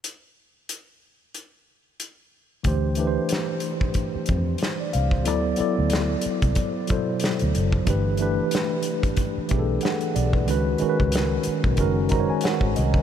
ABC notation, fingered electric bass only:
X:1
M:4/4
L:1/16
Q:"Swing 16ths" 1/4=92
K:Gmix
V:1 name="Fingered electric bass" clef=bass
z16 | D,,4 z6 F,,2 z2 C,,2 | D,,2 z D,,3 z C,, z4 z D,, ^F,,,2 | G,,,4 z6 B,,,2 z2 B,,,2 |
^C,,2 z C,,3 z B,,, ^F,,,4 z ^G,,, =C,,2 |]